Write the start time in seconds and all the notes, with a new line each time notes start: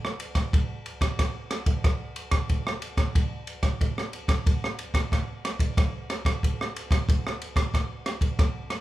0.05 cross-stick
0.20 ride
0.35 kick, cross-stick, ride
0.53 kick, ride
0.86 ride
1.01 kick, cross-stick, ride
1.19 kick, cross-stick, ride
1.51 cross-stick, ride
1.66 kick, ride
1.84 kick, cross-stick, ride
2.16 ride
2.31 kick, cross-stick, ride
2.49 kick, ride
2.67 cross-stick
2.82 ride
2.97 kick, cross-stick, ride
3.15 kick, ride
3.47 ride
3.63 kick, cross-stick, ride
3.81 kick, ride
3.98 cross-stick
4.13 ride
4.28 kick, cross-stick, ride
4.46 kick, ride
4.64 cross-stick
4.79 ride
4.94 kick, cross-stick, ride
5.12 kick, cross-stick, ride
5.45 cross-stick, ride
5.59 kick, ride
5.77 kick, cross-stick, ride
6.10 cross-stick, ride
6.25 kick, cross-stick, ride
6.43 kick, ride
6.61 cross-stick
6.76 ride
6.91 kick, cross-stick, ride
7.09 kick, ride
7.27 cross-stick
7.42 ride
7.56 kick, cross-stick, ride
7.74 kick, cross-stick, ride
8.06 cross-stick, ride
8.21 kick, ride
8.39 kick, cross-stick, ride
8.70 cross-stick, ride